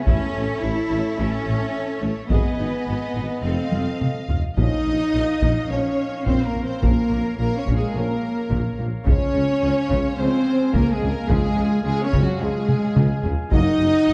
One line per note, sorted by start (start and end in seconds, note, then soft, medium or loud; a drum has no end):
0.06 0.15 A1 medium
0.06 0.19 A1 medium
0.06 0.61 C#4 medium
0.06 0.33 E4 medium
0.06 2.27 E4 medium
0.06 2.31 A4 medium
0.06 2.27 C#5 medium
0.06 2.27 E5 medium
0.06 2.31 E5 medium
0.06 taiko medium
0.34 0.46 A1 soft
0.34 0.44 A1 soft
0.34 0.42 C#4 medium
0.62 0.74 A1 soft
0.62 0.72 A1 soft
0.62 0.71 A3 soft
0.62 1.19 E4 medium
0.91 1.02 A1 medium
0.91 0.99 A1 soft
0.91 0.99 C#4 soft
1.18 1.30 A1 medium
1.18 1.28 A1 medium
1.18 2.02 C#4 medium
1.18 1.44 E4 medium
1.46 1.57 A1 soft
1.46 1.55 A1 soft
1.46 1.54 C#4 soft
2.02 2.10 A1 soft
2.02 2.14 A1 soft
2.02 2.30 A3 medium
2.02 2.10 C#4 soft
2.30 2.38 G#1 medium
2.30 2.42 G#1 medium
2.30 3.41 B3 medium
2.30 3.44 D#4 medium
2.30 2.57 G#4 medium
2.30 3.44 G#4 medium
2.30 3.44 B4 soft
2.30 3.42 B4 medium
2.30 3.41 D#5 medium
2.30 4.30 D#5 medium
2.30 3.44 G#5 medium
2.30 taiko medium
2.58 2.66 G#1 soft
2.58 2.70 G#1 soft
2.58 2.67 D#4 soft
2.86 2.98 G#1 soft
2.86 2.95 G#1 soft
2.86 2.95 B3 soft
3.15 3.23 G#1 soft
3.15 3.27 G#1 soft
3.15 3.24 D#4 soft
3.43 3.51 F1 medium
3.43 3.56 F1 medium
3.43 4.00 C4 medium
3.43 4.30 F4 soft
3.43 4.29 A4 soft
3.43 3.71 A4 medium
3.43 4.30 A4 medium
3.43 4.36 D#5 soft
3.43 4.36 F5 soft
3.43 4.30 F5 medium
3.72 3.81 F1 soft
3.72 3.84 F1 soft
3.72 3.82 F4 soft
3.72 taiko high medium
4.01 taiko mid medium
4.29 4.41 F1 soft
4.29 4.38 F1 soft
4.29 4.38 F4 soft
4.29 taiko low medium
4.57 4.66 A#1 medium
4.57 4.69 A#1 medium
4.57 4.65 A#2 medium
4.57 4.78 F3 medium
4.57 4.78 C#4 medium
4.57 5.66 D#4 medium
4.57 5.67 D#4 medium
4.57 9.04 F4 medium
4.57 9.04 A#4 medium
4.57 9.04 C#5 medium
4.57 5.66 D#5 medium
4.57 5.67 D#5 medium
4.57 9.04 F5 medium
4.57 taiko medium
4.85 4.94 A#1 soft
4.85 4.97 A#1 soft
4.85 4.93 A#2 soft
5.14 5.22 A#1 soft
5.14 5.26 A#1 soft
5.14 5.22 A#2 soft
5.41 5.50 A#1 medium
5.41 5.54 A#1 medium
5.41 5.49 A#2 medium
5.41 taiko medium
5.69 5.78 A#1 soft
5.69 5.82 A#1 soft
5.69 5.77 A#2 soft
5.69 5.90 F3 medium
5.69 5.90 C#4 medium
5.69 6.25 C#4 medium
5.69 6.27 C#4 medium
5.69 6.26 C#5 medium
5.69 6.27 C#5 medium
6.26 6.35 A#1 medium
6.26 6.38 A#1 medium
6.26 6.34 A#2 medium
6.26 6.45 C4 medium
6.26 6.45 C5 medium
6.26 6.46 C5 medium
6.26 taiko medium
6.45 6.64 A#3 medium
6.45 6.64 A#4 medium
6.54 6.66 A#1 soft
6.54 6.63 A#1 soft
6.54 6.62 A#2 soft
6.63 6.82 C4 medium
6.63 6.83 C4 medium
6.63 6.83 C5 medium
6.81 6.94 A#1 medium
6.81 6.92 A#1 medium
6.81 6.90 A#2 medium
6.81 7.02 F3 medium
6.81 7.37 A#3 medium
6.81 7.39 A#3 medium
6.81 7.02 C#4 medium
6.81 7.37 A#4 medium
6.81 7.38 A#4 medium
6.81 taiko medium
7.10 7.23 A#1 soft
7.10 7.20 A#1 soft
7.10 7.18 A#2 medium
7.38 7.50 A#1 soft
7.38 7.48 A#1 soft
7.38 7.46 A#2 soft
7.38 7.57 A#3 medium
7.38 7.58 A#3 medium
7.38 7.57 A#4 medium
7.38 7.58 A#4 medium
7.57 7.76 C#4 medium
7.57 7.77 C#4 medium
7.57 7.76 C#5 medium
7.66 7.78 A#1 medium
7.66 7.76 A#1 medium
7.66 7.75 A#2 medium
7.66 taiko medium
7.76 7.94 G#3 medium
7.76 7.95 G#3 medium
7.76 7.95 G#4 medium
7.94 8.06 A#1 soft
7.94 8.05 A#1 soft
7.94 8.03 A#2 soft
7.94 8.15 F3 medium
7.94 8.79 A#3 medium
7.94 8.80 A#3 medium
7.94 8.14 C#4 medium
7.94 8.79 A#4 medium
7.94 8.80 A#4 medium
8.50 8.62 A#1 medium
8.50 8.60 A#1 medium
8.50 8.58 A#2 medium
8.50 taiko medium
8.78 8.91 A#1 medium
8.78 8.88 A#1 soft
8.78 8.86 A#2 soft
9.05 9.18 C#2 medium
9.05 9.16 C#2 medium
9.05 9.13 C#3 medium
9.05 9.27 F3 medium
9.05 9.27 G#3 medium
9.05 10.14 C#4 medium
9.05 10.15 C#4 medium
9.05 13.49 F4 medium
9.05 13.53 G#4 medium
9.05 10.14 C#5 medium
9.05 10.15 C#5 medium
9.05 13.49 F5 medium
9.05 13.53 G#5 medium
9.05 taiko medium
9.34 9.47 C#2 medium
9.34 9.44 C#2 medium
9.34 9.42 C#3 medium
9.62 9.71 C#2 soft
9.62 9.74 C#2 medium
9.62 9.70 C#3 medium
9.89 9.98 C#2 medium
9.89 10.02 C#2 medium
9.89 9.97 C#3 medium
9.89 taiko medium
10.16 10.27 C#2 medium
10.16 10.30 C#2 medium
10.16 10.26 C#3 soft
10.16 10.39 F3 medium
10.16 10.38 G#3 medium
10.16 10.74 C4 medium
10.16 10.75 C4 medium
10.16 10.73 C5 medium
10.16 10.74 C5 medium
10.73 10.82 C#2 medium
10.73 10.85 C#2 medium
10.73 10.81 C#3 medium
10.73 10.92 A#3 medium
10.73 10.93 A#4 medium
10.73 10.92 A#4 medium
10.73 taiko medium
10.92 11.11 G#3 medium
10.92 11.12 G#3 medium
10.92 11.11 G#4 medium
11.01 11.10 C#2 medium
11.01 11.14 C#2 soft
11.01 11.09 C#3 medium
11.11 11.29 A#3 medium
11.11 11.30 A#3 medium
11.11 11.30 A#4 medium
11.28 11.38 C#2 medium
11.28 11.41 C#2 medium
11.28 11.37 C#3 medium
11.28 11.50 F3 medium
11.28 11.81 G#3 medium
11.28 11.84 G#3 medium
11.28 11.50 G#3 medium
11.28 11.84 G#4 medium
11.28 11.83 G#4 medium
11.28 taiko medium
11.57 11.66 C#2 medium
11.57 11.69 C#2 medium
11.57 11.65 C#3 medium
11.82 11.93 C#2 medium
11.82 11.97 C#2 medium
11.82 11.92 C#3 medium
11.82 12.02 G#3 medium
11.82 12.04 G#3 medium
11.82 12.03 G#4 medium
11.82 12.04 G#4 medium
12.02 12.22 C#4 medium
12.02 12.23 C#4 medium
12.02 12.22 C#5 medium
12.12 12.20 C#2 medium
12.12 12.25 C#2 medium
12.12 12.21 C#3 medium
12.12 taiko medium
12.21 12.40 F#3 medium
12.21 12.41 F#3 medium
12.21 12.41 F#4 medium
12.39 12.48 C#2 medium
12.39 12.52 C#2 medium
12.39 12.48 C#3 medium
12.39 12.61 F3 medium
12.39 13.24 G#3 medium
12.39 12.61 G#3 medium
12.39 13.23 G#3 medium
12.39 13.25 G#4 medium
12.69 taiko mid medium
12.96 13.08 C#2 medium
12.96 13.05 C#2 medium
12.96 13.04 C#3 medium
12.96 taiko mid medium
13.24 13.35 C#2 medium
13.24 13.32 C#2 medium
13.24 13.32 C#3 medium
13.24 taiko low medium
13.50 13.60 F#1 medium
13.50 13.64 F#1 medium
13.50 13.60 F#2 medium
13.50 13.72 F#3 medium
13.50 13.72 A#3 medium
13.50 14.13 D#4 loud
13.50 14.13 F#4 medium
13.50 14.13 A#4 medium
13.50 14.13 C#5 medium
13.50 14.13 D#5 loud
13.50 14.13 F#5 medium
13.50 taiko medium
13.79 13.91 F#1 medium
13.79 13.88 F#1 medium
13.79 13.87 F#2 medium
14.08 14.13 F#1 medium
14.08 14.13 F#2 medium